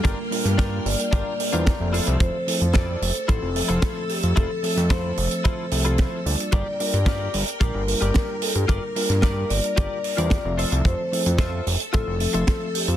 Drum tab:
HH |x-oxx-oxx-oxx-ox|x-oxx-oxx-oxx-ox|x-oxx-oxx-oxx-ox|x-oxx-oxx-oxx-ox|
SD |---oo-------o---|----o-------o---|---oo-------o---|----o-------o---|
BD |o---o---o---o---|o---o---o---o---|o---o---o---o---|o---o---o---o---|

HH |x-oxx-oxx-oxx-ox|x-oxx-oxx-oxx-ox|
SD |---oo-------o---|----o-------o---|
BD |o---o---o---o---|o---o---o---o---|